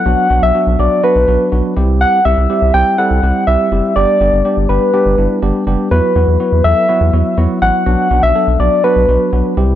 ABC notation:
X:1
M:4/4
L:1/16
Q:1/4=123
K:Bphr
V:1 name="Soft synth lead"
f3 e3 d2 B6 z2 | f2 e4 g2 f4 e4 | d6 B6 z4 | B6 e6 z2 f2- |
f3 e3 d2 B6 z2 |]
V:2 name="Tine electric piano"
[F,B,DF]2 [F,B,DF]2 [F,B,DF]2 [F,B,DF]2 [F,B,DF]2 [F,B,DF]2 [F,B,DF]2 [G,CEG]2- | [G,CEG]2 [G,CEG]2 [G,CEG]2 [G,CEG]2 [G,CEA]2 [G,CEG]2 [G,CEG]2 [G,CEG]2 | [G,B,DG]2 [G,B,DG]2 [G,B,DG]2 [G,B,DG]2 [G,B,DG]2 [G,B,DE]2 [G,B,DG]2 [G,B,DG]2 | [F,B,EF]2 [F,B,EF]2 [F,B,EF]2 [F,B,EA]2 [F,B,EF]2 [F,B,EF]2 [F,B,EF]2 [F,B,EF]2 |
[F,B,DF]2 [F,B,DF]2 [F,B,DA]2 [F,B,DF]2 [F,B,DF]2 [F,B,DF]2 [F,B,DF]2 [G,CEG]2 |]
V:3 name="Analog synth bass" clef=bass
B,,, z B,,, B,,, z B,,, B,,, z2 B,,, B,,, z B,,, z C,,2- | C,, z C,, C,, z C,, C,, z2 C,, C,, z C,, z F,,, z | G,,, z G,,, G,,, z G,,, G,,, z2 G,,, G,,, z G,,, z F,,, z | E,, z E,, E,, z E,, E,, z2 E,, E,, z E,, z A,,, z |
B,,, z B,,, B,,, z B,,, B,,, z2 B,,, B,,, z B,,, z C,,2 |]